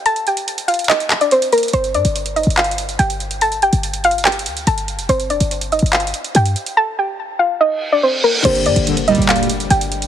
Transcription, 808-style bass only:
\new Staff \with { instrumentName = "808-style bass" } { \clef bass \time 4/4 \key g \minor \tempo 4 = 143 r1 | g,,8 g,16 g,,4 g,,4~ g,,16 g,,4~ | g,,8. g,,4.~ g,,16 d,8 g,,8. f,,16 | g,,8 f,,16 g,,4 g,,8. r8 g,8 r8 |
r1 | g,,8 g,16 g,,4 g,,4~ g,,16 g,,4 | }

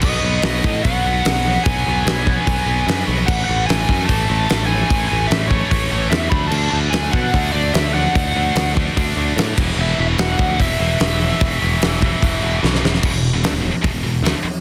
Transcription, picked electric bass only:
\new Staff \with { instrumentName = "Picked electric bass" } { \clef bass \time 4/4 \key e \mixolydian \tempo 4 = 148 b,,8 b,,8 b,,8 a,8 b,,8 b,,8 b,,4 | b,,8 b,,8 b,,4 b,,8 b,,8 fis,8 b,,8 | a,,8 a,,8 a,,8 fis,8 a,,8 a,,8 a,,4 | a,,8 a,,8 a,,4 a,,8 a,,8 e,8 d,8 |
d,8 d,8 d,8 b,8 d,8 d,8 d,4 | d,8 d,8 d,4 d,8 d,8 a,8 e,,8 | e,,8 e,,8 e,,8 d,8 e,,8 e,,8 e,,4 | e,,8 e,,8 e,,4 e,,8 e,,8 b,,8 e,,8 |
e,,16 e,,8 e,,16 d,16 e,,16 e,,16 r16 e,,16 e,,16 e,,8 d,16 r8. | }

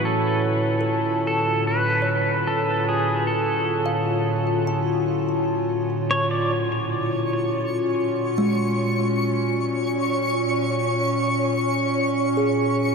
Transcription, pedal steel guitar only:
\new Staff \with { instrumentName = "Pedal steel guitar" } { \time 4/4 \key d \lydian \tempo 4 = 74 a'4. a'8 b'4 a'8 gis'8 | a'2 r4. cis''16 d''16 | r1 | r1 | }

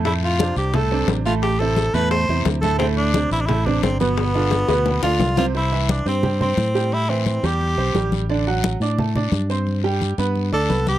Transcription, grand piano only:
\new Staff \with { instrumentName = "Grand piano" } { \time 4/4 \key c \major \tempo 4 = 175 <a, a a'>4 <c c' d'>4 <a, a a'>8 <c c' d'>4 <a, a a'>8~ | <a, a a'>8 <c c' e'>4 <a, a a'>4 <c c' e'>4 <a, a a'>8 | <a, a a'>4 <c c' d'>4 <a, a a'>8 <c c' d'>4 <b, b b'>8~ | <b, b b'>8 <d d' f'>4 <b, b b'>4 <d d' f'>4 <c c' c''>8 |
<c c' c''>8 <e e' e''>4 <c' c'' c'''>8 <g g' g''>8 <c' c'' c'''>4 <g g' g''>8~ | <g g' g''>8 <e e' e''>4 <g g' g''>4 <c' c'' c'''>8 <g g' g''>4 | <d d' d''>8 <fis fis' fis''>4 <d' d'' d'''>8 <a a' a''>8 <d' d'' d'''>4 <c' c'' c'''>8~ | <c' c'' c'''>8 <g g' g''>4 <b b' b''>4 <d' d'' d'''>8 <b b' b''>4 | }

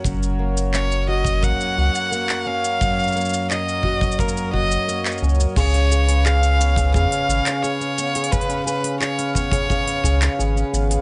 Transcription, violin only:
\new Staff \with { instrumentName = "Violin" } { \time 4/4 \key cis \mixolydian \tempo 4 = 87 r4 cis''8 dis''8 fis''4. eis''8~ | eis''4 dis''4 ais'8 dis''4 r8 | cis''4 eis''4 eis''4 cis''4 | b'8 b'8 cis''8 cis''2 r8 | }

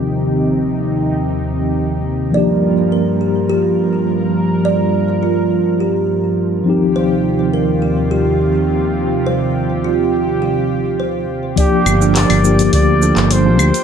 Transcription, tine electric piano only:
\new Staff \with { instrumentName = "Tine electric piano" } { \time 4/4 \key g \minor \tempo 4 = 104 <f c' ees' g'>2.~ <f c' ees' g'>8 r8 | <f bes d' g'>1~ | <f bes d' g'>2.~ <f bes d' g'>8 <f c' ees' g'>8~ | <f c' ees' g'>1~ |
<f c' ees' g'>2.~ <f c' ees' g'>8 r8 | <f bes d' g'>8. <f bes d' g'>8. <f bes d' g'>4 <f bes d' a'>8. <f bes d' g'>8 r16 | }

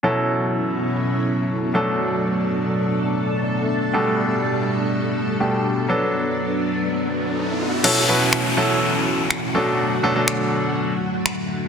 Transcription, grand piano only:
\new Staff \with { instrumentName = "Grand piano" } { \time 4/4 \key fis \phrygian \tempo 4 = 123 <b, fis cis' e' a'>2.~ <b, fis cis' e' a'>8 <b, fis a d' a'>8~ | <b, fis a d' a'>2.~ <b, fis a d' a'>8 r8 | <b, g a d' a'>2. <b, g a d' g'>4 | <fis b d' a'>1 |
<b, fis cis' e' a'>8 <b, fis cis' e' b'>8. r16 <b, fis cis' e' a'>4. r8 <b, fis a d' a'>8~ | <b, fis a d' a'>16 r16 <b, fis a d' a'>16 <b, fis a d' a'>4. r4. r16 | }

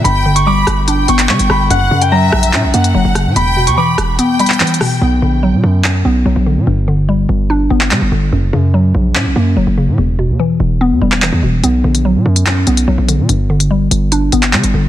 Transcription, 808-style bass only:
\new Staff \with { instrumentName = "808-style bass" } { \clef bass \time 4/4 \key b \minor \tempo 4 = 145 g,,4. g,,4 g,,8 d16 g,,16 g,,8 | fis,,8 fis,4 ais,,8 ais,16 ais,,16 fis,8 fis,,16 fis,,8 ais,16 | e,,8. e,16 r8 e,,8 r2 | b,,8 ais,,8. b,16 fis,4 b,,8 b,,16 ais,,8 b,16 |
g,,4. g,,4 g,,8 d16 g,,16 g,,8 | fis,,8 fis,4 ais,,8 ais,16 ais,,16 fis,8 fis,,16 fis,,8 ais,16 | e,,8. e,16 r8 e,,8. e,16 e,,8. e,16 e,,8 | b,,8 ais,,8. b,16 fis,4 b,,8 b,,16 ais,,8 b,16 |
g,,4. g,,4 g,,8 d16 g,,16 g,,8 | }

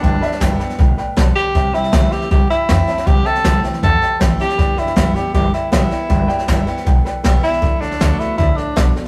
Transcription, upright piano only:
\new Staff \with { instrumentName = "Upright piano" } { \time 4/4 \key g \major \tempo 4 = 158 <b' d'' g''>8 <b' d'' e''>8 <b' d'' g''>8 <b' d'' g''>8 <b' d'' g''>8 <b' d'' g''>8 <b' d'' a''>8 <b' g''>8 | <c'' e'' g''>8 <c'' e'' g''>8 <c'' e'' g''>8 <c'' e'' g''>8 <c'' e'' g''>8 <c'' e'' g''>8 <c'' e'' g''>8 <c'' e'' a''>8 | <c'' e'' g''>8 <c'' e'' g''>8 <c'' e''>8 <c'' e'' g''>8 <c'' e'' g''>8 <c'' e'' g''>8 <c'' e'' g''>8 <c'' e'' a''>8 | <b' d'' g''>8 <b' d'' g''>8 <b' d''>8 <b' d'' g''>8 <b' d'' e''>8 <b' d'' g''>8 <b' d'' g''>8 <b' d'' g''>8 |
<b' d'' g''>8 <b' d'' g''>8 <b' d''>8 <b' d'' g''>8 <b' d'' g''>8 <b' d'' g''>8 <b' d'' g''>8 <b' d'' g''>8 | <a' d'' fis''>8 <a' d'' fis''>8 <a' d'' e''>8 <a' d'' fis''>8 <a' d'' fis''>8 <a' d'' fis''>8 <a' d'' fis''>8 <a' d'' fis''>8 | }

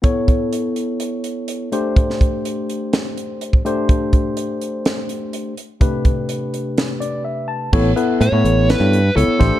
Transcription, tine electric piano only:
\new Staff \with { instrumentName = "Tine electric piano" } { \time 4/4 \key a \minor \tempo 4 = 125 << { r1 | r1 | r1 | r2 r8 d''8 e''8 a''8 |
r1 | } \\ { <b e' a' cis''>2.~ <b e' a' cis''>8 <a d' g' c''>8~ | <a d' g' c''>2.~ <a d' g' c''>8 <a d' g' c''>8~ | <a d' g' c''>2.~ <a d' g' c''>8 r8 | <c a d' g' b'>1 |
<b e' a' cis''>8 <b e' a' b'>8 r16 <b e' a' cis''>4~ <b e' a' cis''>16 r8 <b e' a' cis''>8 <a d' g' c''>8 | } >> }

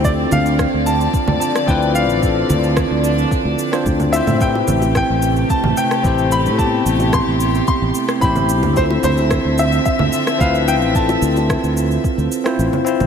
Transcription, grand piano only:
\new Staff \with { instrumentName = "Grand piano" } { \time 4/4 \key d \dorian \tempo 4 = 110 d''8 f''4 a''4 a''8 g''8 f''8~ | f''2.~ f''8 e''8 | g''4 g''4 a''8 g''4 b''8 | a''4 c'''4 c'''4 b''8. r16 |
c''8 c''4 e''8 e''4 f''8 g''8 | a''2. r4 | }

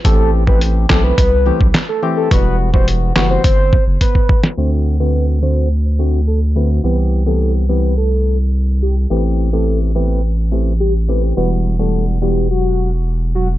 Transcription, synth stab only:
\new Staff \with { instrumentName = "Synth stab" } { \time 4/4 \key e \minor \tempo 4 = 106 <e a c' g'>8. <e a c' g'>8. <e a c' g'>8 r8 <e a c' g'>8 r8 <e a c' g'>8 | <e g b fis'>8. <e g b fis'>8. <e g b fis'>8 r2 | <d a c' fis'>8. <d a c' fis'>8. <d a c' fis'>8 r8 <d a c' fis'>8 r8 <d a c' fis'>8 | <e b c' g'>8. <e b c' g'>8. <e b c' g'>8 r2 |
<e a c' g'>8. <e a c' g'>8. <e a c' g'>8 r8 <e a c' g'>8 r8 <e a c' g'>8 | <e g b fis'>8. <e g b fis'>8. <e g b fis'>8 r2 | }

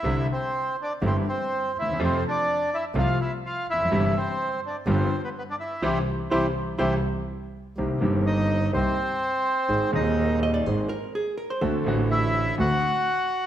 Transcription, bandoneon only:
\new Staff \with { instrumentName = "Bandoneon" } { \time 4/4 \key c \major \tempo 4 = 124 <e' e''>8 <c' c''>4 <d' d''>8 <c' c''>8 <c' c''>4 <e' e''>8 | <c' c''>8 <d' d''>4 <e' e''>8 <f' f''>8 <e' e''>8 <f' f''>8 <e' e''>8~ | <e' e''>8 <c' c''>4 <d' d''>8 <c' c''>8. <b b'>16 <b b'>16 <d' d''>16 <e' e''>8 | <e' g' c''>8 r8 <e' g' c''>8 r8 <e' g' c''>8 r4. |
\key c \minor r4 <ees' ees''>4 <c' c''>2~ | <c' c''>8 <ees' ees''>4 r2 r8 | r4 <e' e''>4 <fis' fis''>2 | }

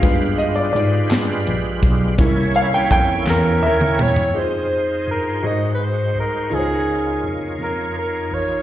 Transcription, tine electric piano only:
\new Staff \with { instrumentName = "Tine electric piano" } { \clef bass \time 6/8 \key f \minor \tempo 4. = 56 g,4 aes,8 g,8 bes,,8 b,,8 | c,4 f,8 e,8 ees,8 e,8 | f,4 g,8 aes,4 c,8 | des,4 f,8 f,4 a,,8 | }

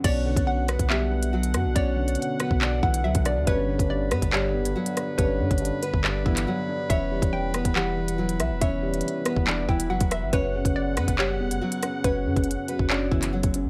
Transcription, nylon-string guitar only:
\new Staff \with { instrumentName = "Nylon-string guitar" } { \time 4/4 \key b \minor \tempo 4 = 140 <cis' cis''>4. <b b'>8 <g g'>4 <fis fis'>4 | <cis' cis''>4. <b b'>8 <d' d''>8 <e e'>8 <fis fis'>4 | <cis' cis''>4. <b b'>8 <g g'>4 <fis fis'>4 | <cis' cis''>4. <b b'>8 <d' d''>8 <e e'>8 <fis fis'>4 |
<cis' cis''>4. <b b'>8 <g g'>4 <fis fis'>4 | <cis' cis''>4. <b b'>8 <d' d''>8 <e e'>8 <fis fis'>4 | <cis' cis''>4. <b b'>8 <g g'>4 <fis fis'>4 | <cis' cis''>4. <b b'>8 <d' d''>8 <e e'>8 <fis fis'>4 | }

